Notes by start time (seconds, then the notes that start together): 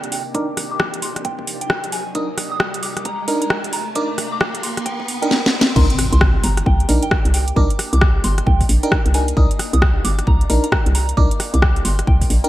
Already playing: C3 A#3 D4 D#4 G4, riser
0.04 closed hi-hat
0.12 G5, open hi-hat
0.34 D4 D#4 A#4 D6, kick, closed hi-hat
0.57 cross-stick, open hi-hat
0.71 D6
0.80 kick, cross-stick
0.94 closed hi-hat
1.02 C6, open hi-hat
1.16 cross-stick, closed hi-hat
1.25 G5, kick, closed hi-hat
1.39 kick
1.47 open hi-hat
1.61 G5, closed hi-hat
1.70 kick, cross-stick
1.84 closed hi-hat
1.92 G#5, open hi-hat
2.15 D4 D#4 A#4 D#6, kick, closed hi-hat
2.38 cross-stick, open hi-hat
2.52 D#6
2.60 kick, cross-stick
2.74 closed hi-hat
2.83 D6, open hi-hat
2.97 cross-stick, closed hi-hat
3.05 A#5, kick, closed hi-hat
3.28 D4 D#4 A#4, open hi-hat
3.42 A#5, closed hi-hat
3.50 kick, cross-stick
3.64 closed hi-hat
3.73 A#5, open hi-hat
3.95 D4 D#4 A#4 D6, kick, closed hi-hat
4.18 cross-stick, open hi-hat
4.32 D6
4.41 kick, cross-stick
4.55 closed hi-hat
4.63 C6, open hi-hat
4.77 cross-stick, closed hi-hat
4.86 G5, kick, closed hi-hat
5.00 kick
5.08 open hi-hat
5.22 D4 D#4 A#4 G5, closed hi-hat
5.31 snare
5.46 snare
5.61 snare
5.76 C2 A#3 D4 D#4 G4 A#4 C6, kick, crash, impact
5.90 closed hi-hat
5.99 cross-stick, open hi-hat
6.12 C2 C6, closed hi-hat
6.21 kick, cross-stick
6.44 G1 A#5, open hi-hat
6.57 cross-stick, closed hi-hat
6.66 C2 G5, kick
6.80 closed hi-hat
6.89 A#1 D4 D#4 A#4, open hi-hat
7.03 G5, closed hi-hat
7.11 kick, cross-stick
7.25 C2, closed hi-hat
7.34 G5, open hi-hat
7.48 closed hi-hat
7.56 C2 D4 D#4 A#4 D6, kick
7.70 closed hi-hat
7.79 cross-stick, open hi-hat
7.93 C2 D6, closed hi-hat
8.01 kick, cross-stick
8.24 G1 C6, open hi-hat
8.38 cross-stick, closed hi-hat
8.46 C2 G5, kick
8.61 kick, open hi-hat
8.69 A#1, open hi-hat
8.83 D4 D#4 A#4 G5, closed hi-hat
8.92 kick, cross-stick
9.06 C2, closed hi-hat
9.14 D4 D#4 A#4 G#5, open hi-hat
9.28 closed hi-hat
9.37 C2 D4 D#4 F4 A#4 D#6, kick
9.51 closed hi-hat
9.59 cross-stick, open hi-hat
9.73 C2 D#6, closed hi-hat
9.82 kick, cross-stick
10.05 G1 D6, open hi-hat
10.19 cross-stick, closed hi-hat
10.27 C2 A#5, kick
10.41 closed hi-hat
10.50 A#1 D4 D#4 A#4, open hi-hat
10.64 A#5, closed hi-hat
10.72 kick, cross-stick
10.86 C2, closed hi-hat
10.95 A#5, open hi-hat
11.09 closed hi-hat
11.17 C2 D4 D#4 A#4 D6, kick
11.31 closed hi-hat
11.40 cross-stick, open hi-hat
11.54 C2 D6, closed hi-hat
11.62 kick, cross-stick
11.76 closed hi-hat
11.85 G1 C6, open hi-hat
11.99 cross-stick, closed hi-hat
12.07 C2 G5, kick
12.21 kick, open hi-hat
12.30 A#1, open hi-hat
12.44 D4 D#4 A#4 G5, closed hi-hat